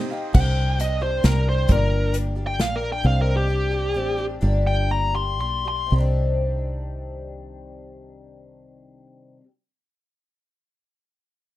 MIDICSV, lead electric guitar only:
0, 0, Header, 1, 2, 480
1, 0, Start_track
1, 0, Key_signature, -3, "minor"
1, 0, Tempo, 449438
1, 368, Time_signature, 3, 2, 24, 8
1, 3730, Tempo, 469116
1, 5170, Tempo, 508475
1, 6130, Tempo, 530504
1, 11239, End_track
2, 0, Start_track
2, 0, Title_t, "Lead electric guitar"
2, 0, Program_c, 0, 29
2, 369, Note_on_c, 0, 79, 86
2, 833, Note_off_c, 0, 79, 0
2, 863, Note_on_c, 0, 75, 78
2, 1088, Note_off_c, 0, 75, 0
2, 1096, Note_on_c, 0, 72, 84
2, 1324, Note_off_c, 0, 72, 0
2, 1333, Note_on_c, 0, 70, 82
2, 1563, Note_off_c, 0, 70, 0
2, 1591, Note_on_c, 0, 72, 79
2, 1812, Note_off_c, 0, 72, 0
2, 1835, Note_on_c, 0, 70, 84
2, 2287, Note_off_c, 0, 70, 0
2, 2636, Note_on_c, 0, 79, 107
2, 2777, Note_off_c, 0, 79, 0
2, 2795, Note_on_c, 0, 77, 84
2, 2937, Note_off_c, 0, 77, 0
2, 2945, Note_on_c, 0, 70, 81
2, 3092, Note_off_c, 0, 70, 0
2, 3122, Note_on_c, 0, 79, 89
2, 3261, Note_off_c, 0, 79, 0
2, 3275, Note_on_c, 0, 77, 92
2, 3417, Note_off_c, 0, 77, 0
2, 3433, Note_on_c, 0, 70, 87
2, 3577, Note_off_c, 0, 70, 0
2, 3596, Note_on_c, 0, 67, 96
2, 4502, Note_off_c, 0, 67, 0
2, 4936, Note_on_c, 0, 79, 91
2, 5170, Note_off_c, 0, 79, 0
2, 5182, Note_on_c, 0, 82, 80
2, 5402, Note_off_c, 0, 82, 0
2, 5410, Note_on_c, 0, 84, 77
2, 5637, Note_off_c, 0, 84, 0
2, 5649, Note_on_c, 0, 84, 78
2, 5880, Note_off_c, 0, 84, 0
2, 5908, Note_on_c, 0, 84, 87
2, 6136, Note_off_c, 0, 84, 0
2, 11239, End_track
0, 0, End_of_file